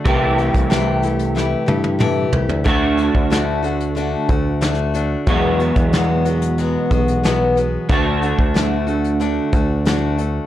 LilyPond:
<<
  \new Staff \with { instrumentName = "Steel-string acoustic guitar" } { \time 4/4 \key d \mixolydian \tempo 4 = 92 <c e a e' g'>8 <a e' g'>8 <c e a e' g'>8 <a e' g'>8 <e a e' g'>8 <a e' g'>8 <c e a e' g'>8 <a e' g'>8 | <d a d' fis'>8 <a d' fis'>8 <d a d' fis'>8 <a d' fis'>8 <d a d' fis'>8 <a d' fis'>8 <d a d' fis'>8 <a d' fis'>8 | <e, b, fis gis b fis'>8 <fis gis b fis'>8 <e, b, fis gis b fis'>8 <fis gis b fis'>8 <fis gis b fis'>8 <fis gis b fis'>8 <e, b, fis gis b fis'>8 <fis gis b fis'>8 | <d a d' fis'>8 <a d' fis'>8 <d a d' fis'>8 <a d' fis'>8 <d a d' fis'>8 <a d' fis'>8 <d a d' fis'>8 <a d' fis'>8 | }
  \new Staff \with { instrumentName = "Clean electric guitar" } { \time 4/4 \key d \mixolydian <c e a e' g'>1 | <d a d' fis'>1 | <e, b, fis gis b fis'>1 | <d a d' fis'>1 | }
  \new Staff \with { instrumentName = "Picked electric bass" } { \clef bass \time 4/4 \key d \mixolydian c,8. c,4.~ c,16 g,4 c,16 d,16 | d,8. d,4.~ d,16 d,4. | e,8. e,4.~ e,16 b,,4. | d,8. d,4.~ d,16 d,4. | }
  \new DrumStaff \with { instrumentName = "Drums" } \drummode { \time 4/4 <hh bd>8 hh16 <hh bd>16 <hh sn>8 hh16 hh16 sn8 tommh16 tommh16 toml8 tomfh16 tomfh16 | <hh bd>8 hh16 bd16 <hh sn>8 hh16 hh16 hh8 <hh bd>8 <hh sn>8 hh8 | <hh bd>8 hh16 <hh bd>16 <hh sn>8 hh16 hh16 hh8 <hh bd>16 hh16 <hh sn>8 hh8 | <hh bd>8 hh16 bd16 <hh sn>8 hh16 hh16 hh8 <hh bd>8 <hh sn>8 hh8 | }
>>